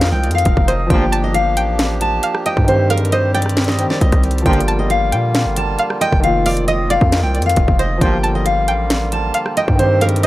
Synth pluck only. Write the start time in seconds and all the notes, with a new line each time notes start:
0.68 C5
1.12 A5
1.57 G5
2.23 F5
2.46 D#5
2.90 F5
3.12 D#5
3.34 G5
4.68 A5
5.12 G5
5.79 F5
6.01 D#5
6.46 F5
6.68 D#5
6.90 D5
7.79 C5
8.23 A5
8.68 G5
9.34 F5
9.57 D#5
10.01 F5
10.24 D#5